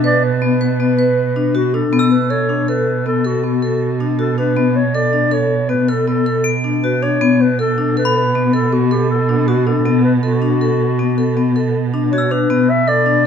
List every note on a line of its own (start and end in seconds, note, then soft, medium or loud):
0.00 1.89 B2 medium
0.04 0.24 B4 medium
0.04 0.22 D5 medium
0.25 1.52 B4 medium
0.42 0.52 B3 medium
0.61 0.71 B4 medium
0.80 0.90 B3 medium
0.99 1.19 B4 medium
1.36 1.46 D4 medium
1.55 1.65 F#4 medium
1.55 1.75 F#4 medium
1.74 1.84 D4 medium
1.74 2.11 A4 medium
1.93 7.21 B2 medium
1.93 2.13 B3 medium
1.99 2.85 E6 medium
2.11 2.32 B4 medium
2.30 2.40 A4 medium
2.30 2.68 C#5 medium
2.49 2.59 D4 medium
2.68 2.88 A4 medium
2.68 3.04 B4 medium
3.06 3.16 B3 medium
3.06 3.27 A4 medium
3.25 3.44 F#4 medium
3.25 3.35 A4 medium
3.44 3.54 B3 medium
3.44 4.02 F#4 medium
3.62 3.83 A4 medium
4.00 4.10 D4 medium
4.19 4.29 F#4 medium
4.19 4.37 A4 medium
4.38 4.48 D4 medium
4.38 4.78 B4 medium
4.57 4.77 B3 medium
4.76 4.96 C#5 medium
4.94 5.05 A4 medium
4.94 5.34 D5 medium
5.13 5.23 D4 medium
5.31 5.52 A4 medium
5.31 5.69 C#5 medium
5.69 5.79 B3 medium
5.69 5.91 B4 medium
5.88 5.99 A4 medium
5.88 6.07 A4 medium
6.07 6.18 B3 medium
6.07 6.53 A4 medium
6.26 6.47 A4 medium
6.44 7.30 D7 medium
6.64 6.74 D4 medium
6.84 6.94 F#4 medium
6.84 7.04 B4 medium
7.03 7.13 D4 medium
7.03 7.43 C#5 medium
7.21 12.50 B2 medium
7.21 7.41 B3 medium
7.41 7.59 B4 medium
7.59 7.69 A4 medium
7.59 7.95 A4 medium
7.78 7.88 D4 medium
7.97 8.17 A4 medium
7.97 8.15 B4 medium
8.05 8.91 B5 soft
8.17 8.52 B4 medium
8.35 8.45 B3 medium
8.53 8.63 A4 medium
8.53 8.74 A4 medium
8.73 8.83 B3 medium
8.73 8.93 F#4 medium
8.91 9.10 G4 medium
8.91 9.11 A4 medium
9.10 9.49 A4 medium
9.29 9.39 D4 medium
9.48 9.68 F#4 medium
9.48 9.58 F#4 medium
9.66 9.77 D4 medium
9.66 10.03 A4 medium
9.86 10.06 B3 medium
10.04 10.13 B4 medium
10.23 11.82 F#4 medium
10.23 10.33 A4 medium
10.42 10.52 D4 medium
10.61 10.81 A4 medium
10.99 11.09 B3 medium
11.18 11.28 A4 medium
11.37 11.47 B3 medium
11.56 11.76 A4 medium
11.94 12.04 D4 medium
12.12 12.23 F#4 medium
12.12 12.33 C#5 medium
12.18 13.04 E6 soft
12.31 12.41 D4 medium
12.31 12.71 B4 medium
12.50 13.27 B2 medium
12.50 12.70 B3 medium
12.70 12.90 E5 medium
12.88 12.98 A4 medium
12.88 13.27 D5 medium
13.06 13.16 D4 medium